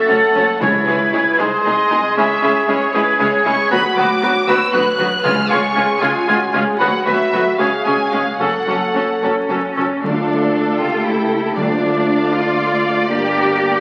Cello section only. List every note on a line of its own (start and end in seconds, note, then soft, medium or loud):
0.09 0.17 F#2 soft
0.35 0.43 F#2 soft
0.61 0.69 C#2 medium
0.88 0.96 C#2 medium
1.13 1.21 C#2 medium
1.39 1.47 C2 soft
1.65 1.73 C2 medium
1.91 1.99 C2 medium
2.17 2.25 C#2 medium
2.43 2.51 C#2 medium
2.69 2.77 C#2 medium
2.95 3.03 C#2 medium
3.21 3.29 C#2 medium
3.46 3.54 C#2 medium
3.71 3.79 D2 medium
3.97 4.05 D2 medium
4.22 4.30 D2 medium
4.49 4.57 D2 medium
4.74 4.82 D2 medium
5.00 5.08 D2 medium
5.25 5.33 C#2 medium
5.51 5.59 C#2 medium
5.76 5.84 C#2 medium
6.02 6.10 C#2 medium
6.28 6.36 C#2 medium
6.53 6.61 C#2 medium
6.79 6.87 D2 medium
7.06 7.14 D2 medium
7.32 7.40 D2 medium
7.59 7.67 C#2 medium
7.86 7.94 C#2 soft
8.13 8.21 C#2 medium
8.40 8.48 F#2 medium
8.68 8.76 F#2 soft
8.96 9.04 F#2 soft
9.23 9.31 F#2 soft
9.23 10.00 C#4 medium
9.50 9.58 F#2 soft
9.77 9.85 F#2 soft
10.04 10.81 D4 medium
10.80 11.06 F4 medium
11.06 11.57 E4 medium
11.56 12.31 D4 medium
12.32 13.08 F4 medium
13.09 13.80 G4 medium